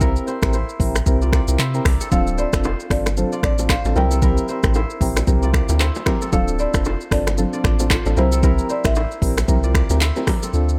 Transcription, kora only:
0.00 1.71 C4 medium
0.00 0.28 E4 medium
0.00 1.28 A#4 loud
0.00 0.27 C5 medium
0.00 0.33 D5 medium
0.27 0.54 E4 medium
0.27 0.53 C5 medium
0.54 1.29 E4 medium
0.54 1.59 C5 medium
1.22 1.33 F4 medium
1.22 1.33 D5 medium
1.33 1.66 F4 medium
1.33 2.44 D5 medium
1.59 2.38 E4 medium
1.59 2.38 C5 medium
1.85 3.54 D4 medium
1.85 2.07 A#4 medium
2.01 2.12 C4 medium
2.01 2.11 A4 medium
2.12 3.93 C4 medium
2.12 3.44 A4 loud
2.38 2.71 E4 medium
2.38 2.64 C5 medium
2.64 3.33 F4 medium
2.64 3.69 C5 medium
3.32 3.44 F4 medium
3.32 3.43 D5 medium
3.43 3.70 F4 medium
3.43 4.54 D5 medium
3.70 4.03 F4 medium
3.70 4.48 C5 medium
3.96 4.23 E4 medium
3.96 4.17 A#4 medium
4.11 5.92 C4 medium
4.11 4.28 A4 medium
4.22 4.49 E4 medium
4.22 5.50 A#4 loud
4.49 4.75 E4 medium
4.49 4.75 C5 medium
4.75 5.50 E4 medium
4.75 5.80 C5 medium
5.43 5.54 F4 medium
5.43 5.54 D5 medium
5.54 5.87 F4 medium
5.54 6.65 D5 medium
5.80 6.60 E4 medium
5.80 6.59 C5 medium
6.07 7.75 D4 medium
6.07 6.28 A#4 medium
6.22 6.33 C4 medium
6.22 6.32 A4 medium
6.33 8.14 C4 medium
6.33 7.65 A4 loud
6.59 6.92 E4 medium
6.59 6.85 C5 medium
6.86 7.54 F4 medium
6.86 7.90 C5 medium
7.53 7.65 F4 medium
7.53 7.64 D5 medium
7.64 7.91 F4 medium
7.64 8.75 D5 medium
7.91 8.24 F4 medium
7.91 8.69 C5 medium
8.17 8.44 E4 medium
8.17 8.38 A#4 medium
8.32 10.13 C4 medium
8.32 8.49 A4 medium
8.43 8.70 E4 medium
8.43 9.70 A#4 loud
8.70 8.96 E4 medium
8.70 8.96 C5 medium
8.96 9.71 E4 medium
8.96 10.01 C5 medium
9.64 9.75 F4 medium
9.64 9.75 D5 medium
9.75 10.08 F4 medium
9.75 10.79 D5 medium
10.01 10.79 E4 medium
10.01 10.79 C5 medium
10.28 10.79 D4 medium
10.28 10.49 A#4 medium
10.43 10.79 C4 medium
10.43 10.79 A4 medium

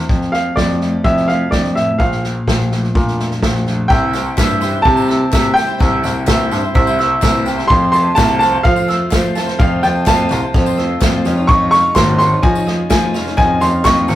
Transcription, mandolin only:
3.90 4.36 E5 medium
4.13 5.09 G5 medium
4.37 4.83 E5 medium
4.61 5.08 C6 medium
4.85 5.31 E5 medium
5.08 6.04 E6 medium
5.32 5.79 E5 medium
5.56 6.02 G5 medium
5.80 6.26 E5 medium
6.03 6.99 G5 medium
6.27 6.74 E5 medium
6.51 6.98 C6 medium
6.75 7.22 E5 medium
6.99 7.70 E6 medium
7.23 7.70 E5 medium
7.46 7.69 G5 medium
7.69 8.16 F5 medium
7.93 8.41 A5 medium
8.17 8.63 F5 medium
8.41 9.35 C6 medium
8.64 9.11 F5 loud
8.88 9.83 E6 medium
9.12 9.59 F5 medium
9.35 9.82 A5 medium
9.60 10.06 F5 loud
9.83 10.30 A5 medium
10.07 10.53 F5 medium
10.31 11.25 C6 medium
10.54 11.00 F5 medium
10.77 11.25 E6 medium
11.02 11.24 F5 medium
11.26 11.72 F5 medium
11.49 11.96 D#5 medium
11.74 12.67 F5 medium
11.97 12.42 D#5 medium
12.19 12.66 C#6 medium
12.43 12.89 D#5 medium
12.67 13.61 D#6 medium
12.91 13.36 D#5 medium
13.14 13.60 F5 medium
13.37 13.84 D#5 medium
13.61 14.15 F5 medium
13.85 14.15 D#5 medium
14.08 14.15 C#6 medium

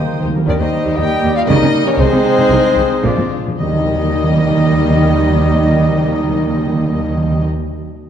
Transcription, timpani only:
0.05 0.12 D#3 medium
0.13 0.19 D#3 medium
0.20 0.27 D#3 loud
0.28 0.34 D#3 loud
0.36 0.43 D#3 loud
0.47 1.19 D#3 loud
3.21 3.28 A#2 medium
3.29 3.36 A#2 medium
3.38 3.46 A#2 medium
3.47 3.55 A#2 medium
3.60 3.66 D#3 loud
3.66 3.73 D#3 medium
3.73 3.79 D#3 loud
3.79 3.85 D#3 medium
3.86 3.92 D#3 loud
3.92 3.98 D#3 medium
3.98 4.04 D#3 medium
4.04 4.10 D#3 medium
4.10 4.16 D#3 loud
4.16 4.23 D#3 medium
4.24 4.30 D#3 loud
4.30 4.36 D#3 loud
4.36 4.43 D#3 loud
4.44 4.50 D#3 medium
4.51 4.57 D#3 loud
4.57 4.63 D#3 loud
4.64 4.71 D#3 medium
4.71 4.77 D#3 medium
4.77 4.83 D#3 loud
4.83 4.90 D#3 loud
4.90 4.96 D#3 loud
4.96 5.03 D#3 medium
5.03 5.09 D#3 loud
5.10 5.16 D#3 medium
5.16 5.22 D#3 medium
5.22 5.28 D#3 medium
5.28 5.34 D#3 loud
5.34 5.40 D#3 medium
5.41 5.47 D#3 loud
5.47 5.53 D#3 medium
5.53 5.59 D#3 loud
5.59 5.66 D#3 medium
5.66 5.72 D#3 loud
5.72 5.79 D#3 medium
5.79 5.86 D#3 loud
5.86 5.92 D#3 medium
5.92 5.98 D#3 loud
5.98 6.04 D#3 loud
6.04 6.11 D#3 medium
6.11 6.17 D#3 medium
6.17 6.24 D#3 medium
6.24 6.29 D#3 medium
6.29 6.35 D#3 loud
6.35 6.42 D#3 loud
6.42 6.48 D#3 loud
6.48 6.54 D#3 loud
6.54 6.60 D#3 medium
6.60 6.66 D#3 loud
6.66 6.72 D#3 loud
6.73 6.79 D#3 medium
6.79 6.86 D#3 loud
6.86 6.92 D#3 medium
6.92 6.99 D#3 loud
6.99 7.05 D#3 medium
7.05 7.11 D#3 loud
7.11 7.17 D#3 loud
7.17 7.24 D#3 loud
7.24 7.30 D#3 medium
7.30 7.36 D#3 loud
7.36 7.42 D#3 medium
7.42 7.49 D#3 medium

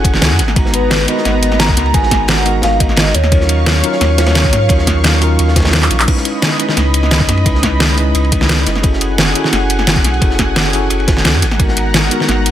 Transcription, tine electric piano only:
0.00 0.41 C#4 medium
0.00 0.41 E4 medium
0.00 0.41 F#4 medium
0.00 0.41 G#4 medium
0.00 0.41 A4 loud
0.54 1.05 G#3 medium
0.54 1.05 B3 medium
0.54 1.06 D#4 medium
0.54 1.06 F#4 medium
0.58 1.07 A#5 medium
1.06 1.91 G#3 medium
1.06 1.92 B3 medium
1.06 1.92 D#4 medium
1.06 1.93 F#4 medium
1.10 1.93 A#4 medium
1.92 2.42 G#3 medium
1.92 2.43 B3 medium
1.92 2.44 D#4 medium
1.92 2.44 F#4 medium
1.96 2.45 A#4 medium
2.44 3.13 G#3 medium
2.44 3.13 B3 medium
2.44 3.14 D#4 medium
2.44 3.14 F#4 medium
2.48 3.15 A#4 loud
3.30 3.80 F#3 medium
3.30 3.81 C#4 medium
3.30 3.82 D#4 medium
3.30 3.82 F4 medium
3.34 3.83 A#4 medium
3.82 4.67 F#3 medium
3.82 4.67 C#4 medium
3.82 4.68 D#4 medium
3.82 4.68 F4 medium
3.86 4.69 A#4 loud
4.68 5.18 F#3 medium
4.68 5.19 C#4 medium
4.68 5.20 D#4 medium
4.68 5.20 F4 medium
4.72 5.21 A#4 medium
5.19 6.05 F#3 medium
5.19 6.05 C#4 medium
5.19 6.06 D#4 medium
5.19 6.06 F4 medium
5.24 6.07 A#4 loud
6.06 6.56 G#3 medium
6.06 6.57 C#4 medium
6.06 6.58 D#4 medium
6.06 6.58 E4 medium
6.10 6.59 B4 medium
6.58 7.42 G#3 medium
6.58 7.43 C#4 medium
6.58 7.44 D#4 medium
6.58 7.44 E4 medium
6.62 7.45 B4 loud
7.44 7.94 G#3 medium
7.44 7.95 C#4 medium
7.44 7.96 D#4 medium
7.44 7.96 E4 medium
7.48 7.97 B4 medium
7.95 8.81 G#3 medium
7.95 8.81 C#4 medium
7.95 8.82 D#4 medium
7.95 8.82 E4 medium
8.00 8.83 B4 loud
8.82 9.33 C#4 medium
8.82 9.33 E4 medium
8.82 9.34 F#4 medium
8.82 9.32 G#4 medium
8.86 9.35 A4 medium
9.33 10.19 C#4 medium
9.33 10.20 E4 medium
9.33 10.20 F#4 medium
9.33 10.19 G#4 medium
9.38 10.21 A4 medium
10.20 10.71 C#4 medium
10.20 10.71 E4 medium
10.20 10.72 F#4 medium
10.20 10.70 G#4 medium
10.24 10.72 A4 medium
10.71 11.41 C#4 medium
10.71 11.41 E4 medium
10.71 11.42 F#4 medium
10.71 11.40 G#4 medium
10.76 11.42 A4 loud
11.57 12.08 G#3 medium
11.57 12.09 B3 medium
11.57 12.09 D#4 medium
11.57 12.10 F#4 medium
11.62 12.10 A#4 medium
12.09 12.51 G#3 medium
12.09 12.51 B3 medium
12.09 12.51 D#4 medium
12.09 12.51 F#4 medium
12.13 12.51 A#4 loud

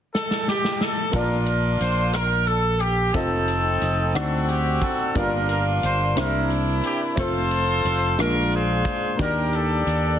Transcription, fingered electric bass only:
1.14 1.77 A#1 medium
1.81 3.11 A#1 medium
3.14 3.78 F1 medium
3.81 4.12 F1 medium
4.15 4.78 D2 medium
5.16 5.79 G1 medium
5.83 6.14 G1 medium
6.17 6.80 C2 medium
7.17 7.80 F1 medium
7.84 8.15 F1 medium
8.19 8.82 A#1 medium
9.19 9.82 D#2 medium
9.86 10.19 D#2 medium

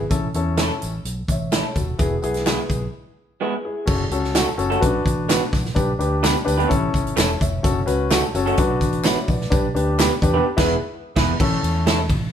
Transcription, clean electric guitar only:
0.58 0.70 A3 medium
0.58 0.70 C#4 medium
0.58 0.71 E4 medium
0.58 0.71 A4 medium
1.52 1.64 A3 medium
1.52 1.65 C#4 medium
1.52 1.65 E4 medium
1.52 1.65 A4 medium
2.46 2.59 G#3 medium
2.46 2.59 B3 medium
2.46 2.59 E4 medium
2.46 2.59 G#4 medium
3.41 3.53 G#3 medium
3.41 3.53 B3 medium
3.41 3.53 E4 medium
3.41 3.53 G#4 medium
4.35 4.47 A3 medium
4.35 4.47 C#4 medium
4.35 4.47 F#4 medium
4.35 4.48 A4 medium
4.70 4.80 A3 soft
4.70 4.80 C#4 soft
4.70 4.80 F#4 medium
4.70 4.80 A4 medium
5.29 5.41 B3 medium
5.29 5.41 D4 medium
5.29 5.41 F#4 medium
5.29 5.42 B4 medium
6.23 6.35 B3 medium
6.23 6.35 D4 medium
6.23 6.35 G4 medium
6.23 6.36 B4 medium
6.57 6.68 B3 medium
6.57 6.68 D4 soft
6.57 6.68 G4 medium
6.57 6.67 B4 medium
7.16 7.29 A3 medium
7.16 7.29 C#4 loud
7.16 7.29 E4 loud
7.16 7.29 A4 loud
8.11 8.23 A3 medium
8.11 8.23 C#4 medium
8.11 8.23 F#4 loud
8.11 8.23 A4 medium
8.46 8.56 A3 medium
8.46 8.56 C#4 medium
8.46 8.56 F#4 medium
8.46 8.56 A4 medium
9.04 9.17 B3 medium
9.04 9.17 D4 medium
9.04 9.17 F#4 medium
9.04 9.17 B4 medium
9.99 10.11 B3 medium
9.99 10.11 D4 medium
9.99 10.11 G4 loud
9.99 10.11 B4 medium
10.34 10.44 B3 medium
10.34 10.44 D4 soft
10.34 10.43 G4 medium
10.34 10.43 B4 medium
10.58 10.74 B3 loud
10.58 10.74 E4 loud
10.58 10.74 G#4 loud
10.58 10.74 B4 loud
11.16 11.32 B3 loud
11.16 11.32 E4 loud
11.16 11.33 G#4 loud
11.16 11.33 B4 loud
11.87 11.98 A3 medium
11.87 11.99 C#4 medium
11.87 11.99 E4 loud
11.87 11.99 A4 loud

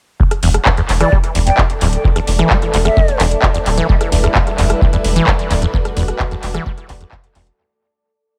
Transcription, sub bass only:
0.43 0.58 E1 loud
0.89 1.04 E1 medium
1.35 1.50 E1 medium
1.81 1.96 D1 medium
2.28 2.42 E1 loud
2.74 2.89 E1 medium
3.20 3.35 E1 medium
3.66 3.81 D1 medium
4.12 4.27 E1 loud
4.58 4.73 E1 medium
5.04 5.19 E1 medium
5.51 5.65 D1 medium
5.97 6.12 E1 medium
6.43 6.58 E1 medium
6.89 7.04 E1 medium
7.35 7.50 E1 medium

